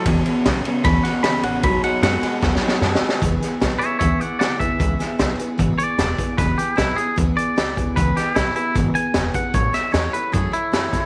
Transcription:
<<
  \new Staff \with { instrumentName = "Clean electric guitar" } { \time 4/4 \key e \mixolydian \tempo 4 = 152 r2 b''8 fis''8 b''8 fis''8 | b''8 fis''8 fis''2. | r4. <cis'' e''>8 <cis'' e''>8 <d'' fis''>8 <d'' fis''>8 e''8~ | e''4. r4 d''4. |
b'8 g'8 e'8 gis'8 r8 d''4. | b'8 g'8 e'8 e'8 r8 gis''4 fis''8 | cis''8 e''8 cis''8 b'8 gis'8 e'4. | }
  \new Staff \with { instrumentName = "Steel-string acoustic guitar" } { \time 4/4 \key e \mixolydian <cis e b cis' gis' cis''>8 <b cis' gis' cis''>8 <b cis' gis' cis''>8 <b cis' gis' cis''>8 <cis e b cis' gis' cis''>8 <b cis' gis' cis''>8 <b cis' gis' cis''>8 <b cis' gis' cis''>8 | <b dis' fis' gis'>8 <dis' fis' gis'>8 <b dis' fis' gis'>8 <dis' fis' gis'>8 <b dis' fis' gis'>8 <dis' fis' gis'>8 <b dis' fis' gis'>8 <dis' fis' gis'>8 | <cis e b e' gis' b'>8 <b e' gis' b'>8 <b e' gis' b'>8 <b e' gis' b'>8 <cis e b e' gis' b'>8 <b e' gis' b'>8 <b e' gis' b'>8 <b e' gis' b'>8 | <cis e b e' gis' b'>8 <b e' gis' b'>8 <b e' gis' b'>8 <b e' gis' b'>8 <cis e b e' gis' b'>8 <b e' gis' b'>8 <b e' gis' b'>8 <b e' gis' b'>8 |
<cis e b e' gis' b'>8 <b e' gis' b'>8 <b e' gis' b'>8 <b e' gis' b'>8 <cis e b e' gis' b'>8 <b e' gis' b'>8 <b e' gis' b'>8 <b e' gis' b'>8 | <cis e b e' gis' b'>8 <b e' gis' b'>8 <b gis' b'>8 <b e' gis' b'>8 <cis e b e' gis' b'>8 <b e' gis' b'>8 <b e' gis' b'>8 <b e' gis' b'>8 | <fis a e' a' cis''>8 <e' a' cis''>8 <fis e' a' cis''>8 <e' a' cis''>8 <fis a e' a' cis''>8 <e' a' cis''>8 <fis e' a' cis''>8 <e' a' cis''>8 | }
  \new Staff \with { instrumentName = "Clean electric guitar" } { \clef bass \time 4/4 \key e \mixolydian <e, b,>8 <e, b,>8 <e, cis>8 <e, cis>8 <e, b,>8 <e, b,>8 <e, cis>8 <e, cis>8 | <b, fis>8 <b, fis>8 <b, gis>8 <b, gis>8 <b, fis>8 <b, fis>8 <b, gis>8 <b, gis>8 | r1 | r1 |
r1 | r1 | r1 | }
  \new Staff \with { instrumentName = "Upright bass" } { \clef bass \time 4/4 \key e \mixolydian e,,8 r8 b,,8 r8 d,8 r8 cis,8 a,,8 | b,,8 r8 fis,8 r8 dis,8 r8 fis,8 r8 | e,,8 r8 b,,8 r8 d,8 r8 cis,8 d,8 | cis,8 r8 b,,8 r8 gis,,8 r8 e,,8 r8 |
e,,8 r8 b,,8 r8 d,8 r8 cis,8 d,8 | cis,8 r8 b,,8 r8 gis,,8 r8 e,,8 r8 | a,,8 r8 e,8 r8 fis,8 r8 fis,8 fis,8 | }
  \new DrumStaff \with { instrumentName = "Drums" } \drummode { \time 4/4 <bd cymr>8 cymr8 <cymr sn>8 cymr8 <bd cymr sn>8 <cymr sn>8 <cymr sn>8 cymr8 | <bd cymr>8 cymr8 <cymr sn>8 <cymr sn>8 \tuplet 3/2 { <bd sn>8 sn8 sn8 sn8 sn8 sn8 } | <hh bd sn>8 <hh sn>8 <hh sn>8 hh8 <hh bd>8 hh8 <hh sn>8 <hh bd>8 | <hh bd>8 <hh sn>8 <hh sn>8 hh8 <hh bd>8 hh8 <hh sn>8 <hh bd>8 |
<hh bd sn>8 hh8 <hh sn>8 hh8 <hh bd>8 hh8 <hh sn>8 <hh bd>8 | <hh bd>8 <hh sn>8 <hh sn>8 hh8 <hh bd>8 hh8 <hh sn>8 <hh bd>8 | <hh bd>8 <hh sn>8 <hh sn>8 hh8 <hh bd>8 hh8 <hh sn>8 <hh bd sn>8 | }
>>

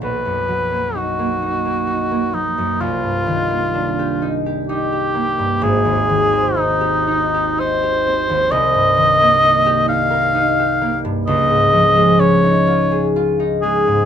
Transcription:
<<
  \new Staff \with { instrumentName = "Cor anglais" } { \time 3/4 \key aes \dorian \tempo 4 = 64 b'4 fis'4. dis'8 | f'4. r8 g'4 | aes'4 ees'4 c''4 | \key des \major ees''4. f''4 r8 |
ees''4 des''4 r8 aes'8 | }
  \new Staff \with { instrumentName = "Harp" } { \time 3/4 \key aes \dorian <b,, ges bes ees' ges'>16 fis,16 fis16 ais16 dis'16 ais16 dis'16 ais16 dis'16 ais16 fis16 fis,16 | c,16 g,16 ees16 bes16 d'16 g'16 ees'16 g'16 ees'16 g'16 bes16 g,16 | aes,,16 ees,16 ees16 c'16 ees'16 g'16 ees'16 g'16 ees'16 g'16 c'16 ees,16 | \key des \major c,16 g,16 ees16 bes16 ees'16 g'16 ees'16 bes'16 ees'16 g'16 bes16 g,16 |
des,16 aes,16 f16 aes16 des'16 ees'16 f'16 aes'16 f'16 ees'16 aes16 aes,16 | }
>>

